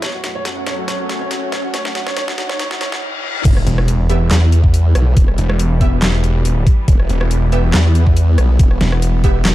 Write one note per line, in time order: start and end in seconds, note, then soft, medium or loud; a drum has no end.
0.00 2.99 F#2 medium
0.00 2.99 F#3 medium
0.00 2.99 A3 medium
0.00 2.99 C#4 medium
0.00 2.99 C#5 medium
0.00 0.09 C#5 medium
0.00 snare medium
0.00 closed hi-hat medium
0.00 riser medium
0.14 0.19 F#4 medium
0.24 0.30 F#4 medium
0.24 snare medium
0.24 closed hi-hat medium
0.35 0.41 C#5 medium
0.45 0.52 F#4 medium
0.45 snare medium
0.45 closed hi-hat medium
0.57 0.62 F#4 medium
0.67 0.73 C#5 medium
0.67 snare medium
0.67 closed hi-hat medium
0.78 0.84 F#4 medium
0.88 0.94 C#5 medium
0.88 snare medium
0.88 closed hi-hat medium
1.00 1.05 F#4 medium
1.09 1.16 F#4 medium
1.09 snare medium
1.09 closed hi-hat soft
1.21 1.26 C#5 medium
1.31 1.37 F#4 medium
1.31 snare medium
1.31 closed hi-hat medium
1.43 1.48 F#4 medium
1.52 1.59 C#5 medium
1.52 snare medium
1.52 closed hi-hat medium
1.64 1.69 F#4 medium
1.74 1.80 C#5 loud
1.74 snare medium
1.74 closed hi-hat medium
1.85 1.91 F#4 medium
1.85 snare medium
1.95 2.02 F#4 medium
1.95 snare loud
1.95 closed hi-hat medium
2.07 2.12 C#5 loud
2.07 snare medium
2.17 2.23 C#5 loud
2.17 snare loud
2.17 closed hi-hat medium
2.28 2.34 F#4 medium
2.28 snare medium
2.38 2.44 F#4 medium
2.38 snare loud
2.38 closed hi-hat medium
2.49 2.55 C#5 medium
2.49 snare medium
2.59 2.66 C#5 loud
2.59 snare loud
2.59 closed hi-hat medium
2.59 reverse cymbal medium
2.71 2.76 F#4 medium
2.71 snare medium
2.81 2.87 C#5 loud
2.81 snare loud
2.81 closed hi-hat medium
2.92 2.98 F#4 medium
2.92 snare medium
3.14 high tom medium
3.24 mid tom medium
3.35 mid tom medium
3.45 3.65 E1 medium
3.45 9.55 E3 medium
3.45 9.55 G3 medium
3.45 9.55 B3 medium
3.45 kick loud
3.45 closed hi-hat medium
3.45 crash loud
3.45 impact medium
3.57 cross-stick medium
3.67 4.29 E1 loud
3.67 closed hi-hat medium
3.78 cross-stick medium
3.88 closed hi-hat medium
4.09 4.16 B3 loud
4.09 4.16 G4 medium
4.09 4.16 E5 loud
4.09 closed hi-hat medium
4.31 4.94 E2 medium
4.31 snare loud
4.31 clap medium
4.31 closed hi-hat medium
4.52 closed hi-hat medium
4.64 kick medium
4.74 closed hi-hat medium
4.95 5.15 B1 medium
4.95 cross-stick medium
4.95 closed hi-hat medium
5.17 5.36 E1 medium
5.17 kick loud
5.17 closed hi-hat medium
5.28 cross-stick medium
5.38 6.01 E1 loud
5.38 closed hi-hat medium
5.49 cross-stick medium
5.59 closed hi-hat medium
5.81 5.88 B3 loud
5.81 5.88 G4 medium
5.81 5.88 E5 loud
5.81 kick medium
5.81 closed hi-hat medium
6.02 6.46 E1 loud
6.02 snare loud
6.02 clap medium
6.02 closed hi-hat medium
6.14 cross-stick soft
6.24 closed hi-hat medium
6.45 6.65 D#1 loud
6.45 closed hi-hat medium
6.67 kick loud
6.67 closed hi-hat medium
6.88 7.08 E1 loud
6.88 kick loud
6.88 closed hi-hat medium
7.00 cross-stick medium
7.09 7.72 E1 loud
7.09 closed hi-hat medium
7.21 cross-stick medium
7.31 closed hi-hat medium
7.52 7.59 B3 loud
7.52 7.59 G4 medium
7.52 7.59 E5 loud
7.52 closed hi-hat medium
7.74 8.36 E2 loud
7.74 snare loud
7.74 clap medium
7.74 closed hi-hat medium
7.95 closed hi-hat medium
8.07 kick medium
8.17 closed hi-hat medium
8.38 8.58 B1 loud
8.38 cross-stick medium
8.38 closed hi-hat medium
8.59 8.79 E1 loud
8.59 kick loud
8.59 closed hi-hat medium
8.71 cross-stick medium
8.81 9.44 E1 loud
8.81 snare medium
8.81 closed hi-hat soft
8.92 cross-stick medium
9.02 closed hi-hat medium
9.24 9.31 B3 loud
9.24 9.31 G4 medium
9.24 9.30 E5 loud
9.24 kick medium
9.24 closed hi-hat medium
9.45 9.55 E1 loud
9.45 snare loud
9.45 clap medium
9.45 closed hi-hat medium